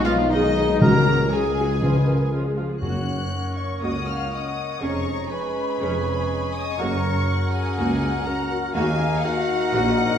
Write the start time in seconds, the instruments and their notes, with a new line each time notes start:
Already playing: double bass section B1, tuba B1, french horn section D#4
0.05 cello section F3, viola section B3 D#4, clarinet F4, oboe F4, violin section F4 F5, flute F5
0.20 viola section G#3 B3
0.30 cello section D#3, viola section B3 D#4, clarinet D#4, violin section D#4 D#5, oboe D#4, french horn section G#4, flute D#5
0.44 viola section G#3 B3
0.56 viola section B3 D#4
0.69 viola section G#3 B3
0.80 tuba C#2, double bass section C#2, timpani C#3, viola section F#3 F#4, cello section A#3, french horn section F#4, clarinet A#4, violin section A#4 A#5, oboe A#4, flute A#5
0.94 viola section G#3 G#4
1.07 viola section F#3 F#4
1.19 viola section G#3 G#4
1.30 viola section F#3 F#4, cello section G#3, oboe G#4, clarinet G#4, violin section G#4 G#5, french horn section G#4, flute G#5
1.45 viola section G#3 G#4
1.58 viola section F#3 F#4
1.70 viola section G#3 G#4
1.82 timpani C#3, viola section F3 F4, french horn section B4
1.96 viola section G#3 G#4
2.07 viola section F3 F4, french horn section A#4
2.19 viola section G#3 G#4
2.32 viola section F3 F4, french horn section G#4
2.45 viola section G#3 G#4
2.57 viola section F3 F4
2.69 viola section G#3 G#4
2.81 tuba F#1, double bass section F#1, timpani F#2, cello section F#2, french horn section A#3 C#4, viola section A#3 F#4, clarinet A#4, oboe C#5, flute F#5, violin section F#6
3.56 flute C#5, violin section C#6
3.81 cello section C#2, tuba C#2, double bass section C#2, viola section A#3 F#4, flute D#5, violin section F#5 D#6
4.06 flute F5, violin section F6
4.30 flute D#5, violin section D#6
4.80 tuba F1, double bass section F1, cello section F2, french horn section G#3 C#4, viola section C#4 G#4, clarinet G#4, oboe C#5, flute C#5, violin section A#5 C#6
5.30 french horn section G#3 C#4, clarinet G#4, flute B4, oboe C#5, violin section G#5 B5
5.80 double bass section F1, tuba F1, cello section F2, viola section C#4 G#4, violin section G#5
6.53 flute D#5, violin section D#6
6.77 double bass section F#1, tuba F#1, cello section F#2, french horn section A#3 C#4, viola section A#3 F#4, clarinet F#4, oboe A#4, flute C#5, violin section A#5 C#6
7.29 violin section F#5
7.52 flute G#4, violin section G#5
7.77 double bass section C#2, tuba C#2, cello section C#2, viola section A#3 F#4
8.24 french horn section A#3 C#4, clarinet F#4, oboe A#4, flute A#4, violin section A#5
8.50 flute F#4, violin section F#5
8.74 double bass section D#2, tuba D#2, cello section D#2, french horn section A#3 D#4, viola section A#3 F#4, clarinet D#4, flute G#4, oboe A#4, violin section F5 G#5
9.23 french horn section A#3 D#4, clarinet D#4, flute F#4, oboe A#4, violin section F#5
9.72 tuba A#1, double bass section A#1, cello section A#2, viola section A#3 F#4, violin section D#5